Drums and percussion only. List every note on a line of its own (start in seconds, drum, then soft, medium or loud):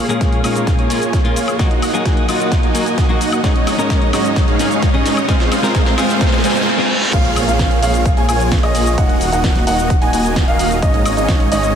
0.09 closed hi-hat soft
0.09 shaker soft
0.21 kick loud
0.21 snare soft
0.21 closed hi-hat medium
0.21 shaker soft
0.32 closed hi-hat soft
0.44 open hi-hat loud
0.44 high woodblock medium
0.44 shaker medium
0.56 closed hi-hat soft
0.56 shaker soft
0.67 kick loud
0.67 snare soft
0.67 closed hi-hat medium
0.67 shaker soft
0.79 closed hi-hat soft
0.90 open hi-hat loud
0.90 shaker medium
1.02 closed hi-hat soft
1.02 shaker soft
1.13 kick loud
1.13 snare medium
1.13 closed hi-hat medium
1.13 shaker soft
1.25 closed hi-hat soft
1.36 open hi-hat loud
1.36 shaker medium
1.48 closed hi-hat soft
1.48 high woodblock medium
1.48 shaker soft
1.59 kick loud
1.59 snare medium
1.59 closed hi-hat medium
1.59 shaker soft
1.71 closed hi-hat soft
1.82 open hi-hat loud
1.82 high woodblock medium
1.82 shaker medium
1.94 closed hi-hat soft
1.94 shaker soft
2.06 kick loud
2.06 snare medium
2.06 closed hi-hat medium
2.06 shaker soft
2.17 closed hi-hat soft
2.29 open hi-hat loud
2.29 high woodblock medium
2.29 shaker medium
2.40 closed hi-hat soft
2.40 shaker soft
2.52 kick loud
2.52 snare medium
2.52 closed hi-hat medium
2.52 shaker soft
2.63 closed hi-hat soft
2.75 open hi-hat loud
2.75 shaker medium
2.86 closed hi-hat soft
2.86 shaker soft
2.98 kick loud
2.98 snare medium
2.98 closed hi-hat medium
2.98 shaker soft
3.09 closed hi-hat soft
3.21 open hi-hat loud
3.21 shaker medium
3.32 closed hi-hat soft
3.32 high woodblock medium
3.32 shaker soft
3.44 kick loud
3.44 snare medium
3.44 closed hi-hat medium
3.44 shaker soft
3.56 closed hi-hat soft
3.67 snare medium
3.67 open hi-hat loud
3.67 high woodblock medium
3.67 shaker medium
3.79 closed hi-hat soft
3.79 shaker soft
3.90 kick loud
3.90 snare medium
3.90 closed hi-hat medium
3.90 shaker soft
4.02 closed hi-hat soft
4.13 snare medium
4.13 open hi-hat loud
4.13 high woodblock medium
4.13 shaker medium
4.25 closed hi-hat soft
4.25 shaker soft
4.36 kick loud
4.36 snare medium
4.36 closed hi-hat medium
4.36 shaker soft
4.48 closed hi-hat soft
4.59 snare medium
4.59 open hi-hat loud
4.59 shaker medium
4.71 closed hi-hat soft
4.71 shaker soft
4.82 kick loud
4.82 snare medium
4.82 closed hi-hat medium
4.82 shaker soft
4.94 closed hi-hat soft
5.06 snare medium
5.06 open hi-hat loud
5.06 shaker medium
5.17 closed hi-hat soft
5.17 high woodblock medium
5.17 shaker soft
5.29 kick loud
5.29 snare medium
5.29 closed hi-hat medium
5.29 shaker soft
5.40 snare medium
5.40 closed hi-hat soft
5.52 snare medium
5.52 open hi-hat loud
5.52 high woodblock medium
5.52 shaker medium
5.63 snare medium
5.63 closed hi-hat soft
5.63 shaker soft
5.75 kick loud
5.75 snare loud
5.75 closed hi-hat medium
5.75 shaker soft
5.86 snare medium
5.86 closed hi-hat soft
5.98 snare loud
5.98 open hi-hat loud
5.98 high woodblock medium
5.98 shaker medium
6.09 snare medium
6.09 closed hi-hat soft
6.09 shaker soft
6.21 kick loud
6.21 snare loud
6.21 closed hi-hat medium
6.21 shaker soft
6.27 snare medium
6.32 snare medium
6.32 closed hi-hat soft
6.38 snare medium
6.44 snare loud
6.44 open hi-hat loud
6.44 shaker medium
6.50 snare loud
6.56 snare medium
6.56 closed hi-hat soft
6.56 shaker soft
6.61 snare medium
6.67 snare medium
6.79 snare medium
7.02 snare medium
7.13 kick loud
7.13 closed hi-hat loud
7.13 crash loud
7.13 shaker soft
7.25 closed hi-hat soft
7.36 open hi-hat loud
7.36 high woodblock medium
7.36 shaker medium
7.48 closed hi-hat soft
7.48 shaker soft
7.59 kick loud
7.59 snare loud
7.59 closed hi-hat loud
7.59 shaker soft
7.71 closed hi-hat soft
7.83 open hi-hat loud
7.83 shaker medium
7.94 closed hi-hat soft
7.94 shaker soft
8.06 kick loud
8.06 closed hi-hat medium
8.06 shaker soft
8.17 closed hi-hat soft
8.29 open hi-hat loud
8.29 high woodblock medium
8.29 shaker medium
8.40 closed hi-hat soft
8.40 shaker soft
8.52 kick loud
8.52 snare loud
8.52 closed hi-hat medium
8.52 shaker soft
8.63 closed hi-hat soft
8.63 high woodblock medium
8.75 open hi-hat loud
8.75 shaker medium
8.86 closed hi-hat soft
8.86 shaker soft
8.98 kick loud
8.98 closed hi-hat medium
8.98 shaker soft
9.09 closed hi-hat soft
9.21 open hi-hat loud
9.21 shaker medium
9.32 closed hi-hat soft
9.32 shaker soft
9.44 kick loud
9.44 snare loud
9.44 closed hi-hat medium
9.44 shaker soft
9.55 snare soft
9.55 closed hi-hat soft
9.67 open hi-hat loud
9.67 shaker medium
9.79 closed hi-hat soft
9.79 shaker soft
9.90 kick loud
9.90 closed hi-hat medium
9.90 shaker soft
10.02 closed hi-hat soft
10.13 open hi-hat loud
10.13 shaker medium
10.25 closed hi-hat soft
10.25 shaker soft
10.36 kick loud
10.36 snare loud
10.36 closed hi-hat medium
10.36 shaker soft
10.48 closed hi-hat soft
10.59 open hi-hat loud
10.59 shaker medium
10.71 closed hi-hat soft
10.71 shaker soft
10.82 kick loud
10.82 closed hi-hat medium
10.82 shaker soft
10.94 closed hi-hat soft
11.06 open hi-hat loud
11.06 high woodblock medium
11.06 shaker medium
11.17 closed hi-hat soft
11.17 shaker soft
11.29 kick loud
11.29 snare loud
11.29 closed hi-hat medium
11.29 shaker soft
11.40 closed hi-hat soft
11.52 open hi-hat loud
11.52 shaker medium
11.63 closed hi-hat soft
11.63 shaker soft